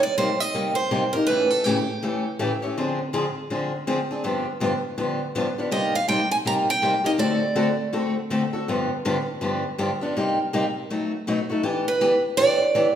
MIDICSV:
0, 0, Header, 1, 3, 480
1, 0, Start_track
1, 0, Tempo, 369686
1, 1659, Time_signature, 4, 2, 24, 8
1, 16819, End_track
2, 0, Start_track
2, 0, Title_t, "Steel-string acoustic guitar"
2, 0, Program_c, 0, 25
2, 39, Note_on_c, 0, 74, 85
2, 208, Note_off_c, 0, 74, 0
2, 230, Note_on_c, 0, 72, 83
2, 523, Note_off_c, 0, 72, 0
2, 523, Note_on_c, 0, 75, 95
2, 971, Note_off_c, 0, 75, 0
2, 976, Note_on_c, 0, 72, 91
2, 1465, Note_on_c, 0, 70, 72
2, 1481, Note_off_c, 0, 72, 0
2, 1638, Note_off_c, 0, 70, 0
2, 1643, Note_on_c, 0, 71, 84
2, 1954, Note_off_c, 0, 71, 0
2, 1954, Note_on_c, 0, 69, 70
2, 2129, Note_off_c, 0, 69, 0
2, 2129, Note_on_c, 0, 67, 67
2, 3391, Note_off_c, 0, 67, 0
2, 7429, Note_on_c, 0, 75, 77
2, 7730, Note_off_c, 0, 75, 0
2, 7730, Note_on_c, 0, 77, 79
2, 7895, Note_off_c, 0, 77, 0
2, 7900, Note_on_c, 0, 79, 87
2, 8193, Note_off_c, 0, 79, 0
2, 8198, Note_on_c, 0, 80, 82
2, 8263, Note_off_c, 0, 80, 0
2, 8404, Note_on_c, 0, 82, 89
2, 8481, Note_off_c, 0, 82, 0
2, 8700, Note_on_c, 0, 79, 94
2, 9167, Note_on_c, 0, 75, 75
2, 9169, Note_off_c, 0, 79, 0
2, 9231, Note_off_c, 0, 75, 0
2, 9340, Note_on_c, 0, 74, 71
2, 10065, Note_off_c, 0, 74, 0
2, 15424, Note_on_c, 0, 71, 77
2, 15858, Note_off_c, 0, 71, 0
2, 16064, Note_on_c, 0, 74, 95
2, 16787, Note_off_c, 0, 74, 0
2, 16819, End_track
3, 0, Start_track
3, 0, Title_t, "Steel-string acoustic guitar"
3, 0, Program_c, 1, 25
3, 233, Note_on_c, 1, 48, 74
3, 234, Note_on_c, 1, 55, 70
3, 235, Note_on_c, 1, 58, 79
3, 241, Note_on_c, 1, 67, 78
3, 242, Note_on_c, 1, 63, 82
3, 372, Note_off_c, 1, 48, 0
3, 372, Note_off_c, 1, 55, 0
3, 373, Note_off_c, 1, 58, 0
3, 375, Note_off_c, 1, 67, 0
3, 376, Note_off_c, 1, 63, 0
3, 708, Note_on_c, 1, 48, 52
3, 710, Note_on_c, 1, 55, 58
3, 710, Note_on_c, 1, 58, 57
3, 713, Note_on_c, 1, 63, 58
3, 715, Note_on_c, 1, 67, 62
3, 978, Note_off_c, 1, 48, 0
3, 979, Note_off_c, 1, 55, 0
3, 979, Note_off_c, 1, 58, 0
3, 981, Note_off_c, 1, 63, 0
3, 982, Note_off_c, 1, 67, 0
3, 1182, Note_on_c, 1, 48, 80
3, 1183, Note_on_c, 1, 55, 73
3, 1186, Note_on_c, 1, 58, 71
3, 1188, Note_on_c, 1, 63, 73
3, 1194, Note_on_c, 1, 67, 82
3, 1326, Note_off_c, 1, 48, 0
3, 1327, Note_off_c, 1, 55, 0
3, 1328, Note_off_c, 1, 58, 0
3, 1329, Note_off_c, 1, 63, 0
3, 1332, Note_off_c, 1, 67, 0
3, 1488, Note_on_c, 1, 67, 57
3, 1502, Note_on_c, 1, 63, 45
3, 1503, Note_on_c, 1, 58, 45
3, 1658, Note_off_c, 1, 67, 0
3, 1665, Note_off_c, 1, 58, 0
3, 1665, Note_off_c, 1, 63, 0
3, 1666, Note_on_c, 1, 45, 66
3, 1666, Note_on_c, 1, 49, 60
3, 1668, Note_on_c, 1, 52, 64
3, 1674, Note_on_c, 1, 57, 63
3, 1674, Note_on_c, 1, 61, 69
3, 1677, Note_on_c, 1, 67, 66
3, 1937, Note_off_c, 1, 45, 0
3, 1937, Note_off_c, 1, 49, 0
3, 1938, Note_off_c, 1, 52, 0
3, 1941, Note_off_c, 1, 57, 0
3, 1941, Note_off_c, 1, 61, 0
3, 1942, Note_off_c, 1, 67, 0
3, 2148, Note_on_c, 1, 45, 74
3, 2153, Note_on_c, 1, 57, 81
3, 2154, Note_on_c, 1, 49, 80
3, 2154, Note_on_c, 1, 52, 84
3, 2158, Note_on_c, 1, 67, 80
3, 2159, Note_on_c, 1, 61, 83
3, 2289, Note_off_c, 1, 45, 0
3, 2291, Note_off_c, 1, 57, 0
3, 2292, Note_off_c, 1, 49, 0
3, 2292, Note_off_c, 1, 52, 0
3, 2294, Note_off_c, 1, 61, 0
3, 2294, Note_off_c, 1, 67, 0
3, 2629, Note_on_c, 1, 45, 59
3, 2632, Note_on_c, 1, 49, 66
3, 2635, Note_on_c, 1, 52, 61
3, 2641, Note_on_c, 1, 57, 63
3, 2642, Note_on_c, 1, 61, 65
3, 2644, Note_on_c, 1, 67, 67
3, 2898, Note_off_c, 1, 45, 0
3, 2900, Note_off_c, 1, 49, 0
3, 2902, Note_off_c, 1, 52, 0
3, 2905, Note_off_c, 1, 57, 0
3, 2905, Note_off_c, 1, 61, 0
3, 2906, Note_off_c, 1, 67, 0
3, 3107, Note_on_c, 1, 45, 74
3, 3109, Note_on_c, 1, 49, 70
3, 3109, Note_on_c, 1, 57, 82
3, 3116, Note_on_c, 1, 52, 76
3, 3117, Note_on_c, 1, 61, 75
3, 3120, Note_on_c, 1, 67, 80
3, 3248, Note_off_c, 1, 45, 0
3, 3250, Note_off_c, 1, 49, 0
3, 3250, Note_off_c, 1, 57, 0
3, 3253, Note_off_c, 1, 52, 0
3, 3253, Note_off_c, 1, 61, 0
3, 3255, Note_off_c, 1, 67, 0
3, 3404, Note_on_c, 1, 67, 54
3, 3412, Note_on_c, 1, 61, 48
3, 3420, Note_on_c, 1, 57, 48
3, 3426, Note_on_c, 1, 52, 47
3, 3576, Note_off_c, 1, 67, 0
3, 3580, Note_off_c, 1, 61, 0
3, 3583, Note_off_c, 1, 57, 0
3, 3587, Note_off_c, 1, 52, 0
3, 3602, Note_on_c, 1, 50, 64
3, 3605, Note_on_c, 1, 53, 64
3, 3607, Note_on_c, 1, 60, 62
3, 3611, Note_on_c, 1, 62, 67
3, 3616, Note_on_c, 1, 68, 67
3, 3865, Note_off_c, 1, 50, 0
3, 3866, Note_off_c, 1, 53, 0
3, 3867, Note_off_c, 1, 60, 0
3, 3869, Note_off_c, 1, 62, 0
3, 3872, Note_off_c, 1, 68, 0
3, 4065, Note_on_c, 1, 50, 73
3, 4073, Note_on_c, 1, 60, 77
3, 4074, Note_on_c, 1, 53, 82
3, 4077, Note_on_c, 1, 68, 84
3, 4080, Note_on_c, 1, 62, 82
3, 4207, Note_off_c, 1, 50, 0
3, 4211, Note_off_c, 1, 60, 0
3, 4212, Note_off_c, 1, 53, 0
3, 4213, Note_off_c, 1, 68, 0
3, 4215, Note_off_c, 1, 62, 0
3, 4547, Note_on_c, 1, 53, 54
3, 4550, Note_on_c, 1, 50, 59
3, 4552, Note_on_c, 1, 60, 59
3, 4559, Note_on_c, 1, 62, 63
3, 4559, Note_on_c, 1, 68, 66
3, 4818, Note_off_c, 1, 53, 0
3, 4819, Note_off_c, 1, 50, 0
3, 4820, Note_off_c, 1, 60, 0
3, 4823, Note_off_c, 1, 62, 0
3, 4824, Note_off_c, 1, 68, 0
3, 5026, Note_on_c, 1, 50, 73
3, 5029, Note_on_c, 1, 53, 77
3, 5029, Note_on_c, 1, 60, 80
3, 5035, Note_on_c, 1, 62, 77
3, 5036, Note_on_c, 1, 68, 84
3, 5168, Note_off_c, 1, 50, 0
3, 5169, Note_off_c, 1, 53, 0
3, 5170, Note_off_c, 1, 60, 0
3, 5173, Note_off_c, 1, 62, 0
3, 5173, Note_off_c, 1, 68, 0
3, 5333, Note_on_c, 1, 68, 56
3, 5344, Note_on_c, 1, 62, 47
3, 5351, Note_on_c, 1, 60, 41
3, 5495, Note_off_c, 1, 62, 0
3, 5500, Note_off_c, 1, 68, 0
3, 5502, Note_off_c, 1, 60, 0
3, 5502, Note_on_c, 1, 43, 60
3, 5507, Note_on_c, 1, 59, 66
3, 5509, Note_on_c, 1, 50, 66
3, 5511, Note_on_c, 1, 62, 62
3, 5512, Note_on_c, 1, 53, 66
3, 5518, Note_on_c, 1, 67, 70
3, 5775, Note_off_c, 1, 43, 0
3, 5778, Note_off_c, 1, 50, 0
3, 5778, Note_off_c, 1, 59, 0
3, 5779, Note_off_c, 1, 62, 0
3, 5780, Note_off_c, 1, 53, 0
3, 5783, Note_off_c, 1, 67, 0
3, 5978, Note_on_c, 1, 43, 78
3, 5988, Note_on_c, 1, 50, 74
3, 5988, Note_on_c, 1, 53, 76
3, 5988, Note_on_c, 1, 59, 84
3, 5990, Note_on_c, 1, 62, 92
3, 5993, Note_on_c, 1, 67, 79
3, 6124, Note_off_c, 1, 43, 0
3, 6129, Note_off_c, 1, 50, 0
3, 6129, Note_off_c, 1, 53, 0
3, 6129, Note_off_c, 1, 59, 0
3, 6130, Note_off_c, 1, 62, 0
3, 6131, Note_off_c, 1, 67, 0
3, 6462, Note_on_c, 1, 43, 54
3, 6462, Note_on_c, 1, 50, 57
3, 6462, Note_on_c, 1, 59, 65
3, 6466, Note_on_c, 1, 53, 56
3, 6466, Note_on_c, 1, 62, 61
3, 6467, Note_on_c, 1, 67, 64
3, 6735, Note_off_c, 1, 43, 0
3, 6735, Note_off_c, 1, 50, 0
3, 6735, Note_off_c, 1, 59, 0
3, 6737, Note_off_c, 1, 53, 0
3, 6737, Note_off_c, 1, 62, 0
3, 6738, Note_off_c, 1, 67, 0
3, 6947, Note_on_c, 1, 43, 70
3, 6953, Note_on_c, 1, 50, 78
3, 6954, Note_on_c, 1, 59, 71
3, 6957, Note_on_c, 1, 53, 78
3, 6958, Note_on_c, 1, 62, 70
3, 6960, Note_on_c, 1, 67, 75
3, 7089, Note_off_c, 1, 43, 0
3, 7091, Note_off_c, 1, 50, 0
3, 7092, Note_off_c, 1, 59, 0
3, 7093, Note_off_c, 1, 53, 0
3, 7094, Note_off_c, 1, 62, 0
3, 7095, Note_off_c, 1, 67, 0
3, 7248, Note_on_c, 1, 67, 54
3, 7256, Note_on_c, 1, 62, 51
3, 7262, Note_on_c, 1, 59, 46
3, 7266, Note_on_c, 1, 53, 45
3, 7412, Note_off_c, 1, 59, 0
3, 7414, Note_off_c, 1, 67, 0
3, 7417, Note_on_c, 1, 58, 66
3, 7418, Note_off_c, 1, 53, 0
3, 7420, Note_off_c, 1, 62, 0
3, 7420, Note_on_c, 1, 48, 57
3, 7423, Note_on_c, 1, 55, 65
3, 7425, Note_on_c, 1, 63, 72
3, 7430, Note_on_c, 1, 67, 68
3, 7693, Note_off_c, 1, 58, 0
3, 7694, Note_off_c, 1, 48, 0
3, 7696, Note_off_c, 1, 55, 0
3, 7697, Note_off_c, 1, 63, 0
3, 7699, Note_off_c, 1, 67, 0
3, 7892, Note_on_c, 1, 48, 77
3, 7901, Note_on_c, 1, 55, 80
3, 7903, Note_on_c, 1, 58, 86
3, 7903, Note_on_c, 1, 63, 79
3, 7908, Note_on_c, 1, 67, 87
3, 8041, Note_off_c, 1, 48, 0
3, 8046, Note_off_c, 1, 55, 0
3, 8047, Note_off_c, 1, 58, 0
3, 8047, Note_off_c, 1, 63, 0
3, 8049, Note_off_c, 1, 67, 0
3, 8374, Note_on_c, 1, 48, 54
3, 8383, Note_on_c, 1, 63, 63
3, 8384, Note_on_c, 1, 55, 57
3, 8384, Note_on_c, 1, 58, 61
3, 8385, Note_on_c, 1, 67, 66
3, 8651, Note_off_c, 1, 48, 0
3, 8656, Note_off_c, 1, 55, 0
3, 8656, Note_off_c, 1, 58, 0
3, 8656, Note_off_c, 1, 63, 0
3, 8657, Note_off_c, 1, 67, 0
3, 8855, Note_on_c, 1, 48, 67
3, 8856, Note_on_c, 1, 55, 71
3, 8862, Note_on_c, 1, 58, 77
3, 8864, Note_on_c, 1, 63, 82
3, 8867, Note_on_c, 1, 67, 84
3, 9003, Note_off_c, 1, 48, 0
3, 9003, Note_off_c, 1, 55, 0
3, 9006, Note_off_c, 1, 58, 0
3, 9007, Note_off_c, 1, 63, 0
3, 9009, Note_off_c, 1, 67, 0
3, 9144, Note_on_c, 1, 67, 55
3, 9154, Note_on_c, 1, 63, 53
3, 9165, Note_on_c, 1, 58, 46
3, 9322, Note_on_c, 1, 50, 64
3, 9325, Note_off_c, 1, 58, 0
3, 9326, Note_off_c, 1, 67, 0
3, 9327, Note_off_c, 1, 63, 0
3, 9330, Note_on_c, 1, 60, 68
3, 9331, Note_on_c, 1, 57, 65
3, 9332, Note_on_c, 1, 66, 67
3, 9343, Note_on_c, 1, 69, 66
3, 9605, Note_off_c, 1, 50, 0
3, 9610, Note_off_c, 1, 57, 0
3, 9610, Note_off_c, 1, 60, 0
3, 9610, Note_off_c, 1, 66, 0
3, 9616, Note_off_c, 1, 69, 0
3, 9809, Note_on_c, 1, 50, 77
3, 9812, Note_on_c, 1, 57, 83
3, 9814, Note_on_c, 1, 60, 80
3, 9817, Note_on_c, 1, 69, 87
3, 9820, Note_on_c, 1, 66, 89
3, 9960, Note_off_c, 1, 50, 0
3, 9961, Note_off_c, 1, 57, 0
3, 9962, Note_off_c, 1, 60, 0
3, 9964, Note_off_c, 1, 69, 0
3, 9965, Note_off_c, 1, 66, 0
3, 10292, Note_on_c, 1, 50, 59
3, 10299, Note_on_c, 1, 57, 59
3, 10299, Note_on_c, 1, 66, 63
3, 10303, Note_on_c, 1, 60, 62
3, 10307, Note_on_c, 1, 69, 64
3, 10571, Note_off_c, 1, 50, 0
3, 10574, Note_off_c, 1, 57, 0
3, 10574, Note_off_c, 1, 66, 0
3, 10576, Note_off_c, 1, 60, 0
3, 10578, Note_off_c, 1, 69, 0
3, 10781, Note_on_c, 1, 50, 72
3, 10786, Note_on_c, 1, 57, 78
3, 10789, Note_on_c, 1, 66, 78
3, 10792, Note_on_c, 1, 60, 78
3, 10797, Note_on_c, 1, 69, 86
3, 10926, Note_off_c, 1, 50, 0
3, 10929, Note_off_c, 1, 57, 0
3, 10930, Note_off_c, 1, 66, 0
3, 10931, Note_off_c, 1, 60, 0
3, 10934, Note_off_c, 1, 69, 0
3, 11077, Note_on_c, 1, 69, 59
3, 11092, Note_on_c, 1, 66, 47
3, 11098, Note_on_c, 1, 60, 41
3, 11253, Note_off_c, 1, 69, 0
3, 11260, Note_off_c, 1, 66, 0
3, 11263, Note_off_c, 1, 60, 0
3, 11273, Note_on_c, 1, 50, 64
3, 11279, Note_on_c, 1, 43, 64
3, 11284, Note_on_c, 1, 53, 69
3, 11285, Note_on_c, 1, 59, 67
3, 11286, Note_on_c, 1, 67, 64
3, 11287, Note_on_c, 1, 62, 67
3, 11542, Note_off_c, 1, 50, 0
3, 11544, Note_off_c, 1, 43, 0
3, 11547, Note_off_c, 1, 53, 0
3, 11548, Note_off_c, 1, 59, 0
3, 11548, Note_off_c, 1, 62, 0
3, 11548, Note_off_c, 1, 67, 0
3, 11750, Note_on_c, 1, 50, 77
3, 11755, Note_on_c, 1, 43, 77
3, 11756, Note_on_c, 1, 53, 82
3, 11757, Note_on_c, 1, 59, 86
3, 11760, Note_on_c, 1, 62, 83
3, 11763, Note_on_c, 1, 67, 90
3, 11891, Note_off_c, 1, 50, 0
3, 11893, Note_off_c, 1, 43, 0
3, 11894, Note_off_c, 1, 53, 0
3, 11894, Note_off_c, 1, 59, 0
3, 11896, Note_off_c, 1, 62, 0
3, 11897, Note_off_c, 1, 67, 0
3, 12217, Note_on_c, 1, 43, 55
3, 12220, Note_on_c, 1, 53, 60
3, 12222, Note_on_c, 1, 50, 59
3, 12228, Note_on_c, 1, 59, 64
3, 12230, Note_on_c, 1, 62, 62
3, 12235, Note_on_c, 1, 67, 66
3, 12493, Note_off_c, 1, 43, 0
3, 12495, Note_off_c, 1, 53, 0
3, 12496, Note_off_c, 1, 50, 0
3, 12499, Note_off_c, 1, 59, 0
3, 12500, Note_off_c, 1, 62, 0
3, 12502, Note_off_c, 1, 67, 0
3, 12704, Note_on_c, 1, 43, 70
3, 12707, Note_on_c, 1, 50, 77
3, 12711, Note_on_c, 1, 53, 77
3, 12711, Note_on_c, 1, 59, 73
3, 12713, Note_on_c, 1, 67, 86
3, 12717, Note_on_c, 1, 62, 77
3, 12848, Note_off_c, 1, 43, 0
3, 12849, Note_off_c, 1, 50, 0
3, 12851, Note_off_c, 1, 53, 0
3, 12851, Note_off_c, 1, 59, 0
3, 12852, Note_off_c, 1, 67, 0
3, 12854, Note_off_c, 1, 62, 0
3, 13002, Note_on_c, 1, 67, 55
3, 13016, Note_on_c, 1, 62, 53
3, 13020, Note_on_c, 1, 59, 44
3, 13024, Note_on_c, 1, 53, 45
3, 13176, Note_off_c, 1, 67, 0
3, 13183, Note_off_c, 1, 62, 0
3, 13185, Note_off_c, 1, 59, 0
3, 13187, Note_off_c, 1, 53, 0
3, 13198, Note_on_c, 1, 48, 66
3, 13200, Note_on_c, 1, 55, 70
3, 13203, Note_on_c, 1, 58, 62
3, 13211, Note_on_c, 1, 67, 65
3, 13213, Note_on_c, 1, 63, 66
3, 13464, Note_off_c, 1, 48, 0
3, 13465, Note_off_c, 1, 55, 0
3, 13466, Note_off_c, 1, 58, 0
3, 13470, Note_off_c, 1, 67, 0
3, 13471, Note_off_c, 1, 63, 0
3, 13675, Note_on_c, 1, 48, 75
3, 13679, Note_on_c, 1, 58, 81
3, 13683, Note_on_c, 1, 55, 81
3, 13685, Note_on_c, 1, 67, 87
3, 13688, Note_on_c, 1, 63, 91
3, 13814, Note_off_c, 1, 48, 0
3, 13816, Note_off_c, 1, 58, 0
3, 13817, Note_off_c, 1, 55, 0
3, 13818, Note_off_c, 1, 67, 0
3, 13820, Note_off_c, 1, 63, 0
3, 14157, Note_on_c, 1, 47, 59
3, 14161, Note_on_c, 1, 54, 61
3, 14162, Note_on_c, 1, 57, 56
3, 14168, Note_on_c, 1, 63, 57
3, 14169, Note_on_c, 1, 66, 59
3, 14423, Note_off_c, 1, 47, 0
3, 14425, Note_off_c, 1, 54, 0
3, 14426, Note_off_c, 1, 57, 0
3, 14429, Note_off_c, 1, 63, 0
3, 14429, Note_off_c, 1, 66, 0
3, 14635, Note_on_c, 1, 47, 67
3, 14641, Note_on_c, 1, 54, 69
3, 14645, Note_on_c, 1, 57, 73
3, 14646, Note_on_c, 1, 63, 73
3, 14651, Note_on_c, 1, 66, 79
3, 14774, Note_off_c, 1, 47, 0
3, 14776, Note_off_c, 1, 54, 0
3, 14778, Note_off_c, 1, 57, 0
3, 14779, Note_off_c, 1, 63, 0
3, 14781, Note_off_c, 1, 66, 0
3, 14926, Note_on_c, 1, 66, 51
3, 14940, Note_on_c, 1, 63, 44
3, 14950, Note_on_c, 1, 57, 47
3, 15098, Note_off_c, 1, 66, 0
3, 15101, Note_off_c, 1, 57, 0
3, 15102, Note_off_c, 1, 63, 0
3, 15103, Note_on_c, 1, 52, 72
3, 15106, Note_on_c, 1, 59, 69
3, 15107, Note_on_c, 1, 62, 74
3, 15115, Note_on_c, 1, 67, 77
3, 15376, Note_off_c, 1, 52, 0
3, 15378, Note_off_c, 1, 59, 0
3, 15378, Note_off_c, 1, 62, 0
3, 15383, Note_off_c, 1, 67, 0
3, 15594, Note_on_c, 1, 52, 82
3, 15595, Note_on_c, 1, 59, 85
3, 15601, Note_on_c, 1, 62, 87
3, 15602, Note_on_c, 1, 67, 96
3, 15733, Note_off_c, 1, 52, 0
3, 15733, Note_off_c, 1, 59, 0
3, 15736, Note_off_c, 1, 62, 0
3, 15737, Note_off_c, 1, 67, 0
3, 16076, Note_on_c, 1, 52, 64
3, 16076, Note_on_c, 1, 59, 62
3, 16084, Note_on_c, 1, 62, 70
3, 16088, Note_on_c, 1, 67, 73
3, 16343, Note_off_c, 1, 52, 0
3, 16343, Note_off_c, 1, 59, 0
3, 16347, Note_off_c, 1, 62, 0
3, 16348, Note_off_c, 1, 67, 0
3, 16553, Note_on_c, 1, 52, 82
3, 16553, Note_on_c, 1, 59, 83
3, 16563, Note_on_c, 1, 62, 86
3, 16565, Note_on_c, 1, 67, 82
3, 16692, Note_off_c, 1, 52, 0
3, 16692, Note_off_c, 1, 59, 0
3, 16697, Note_off_c, 1, 62, 0
3, 16698, Note_off_c, 1, 67, 0
3, 16819, End_track
0, 0, End_of_file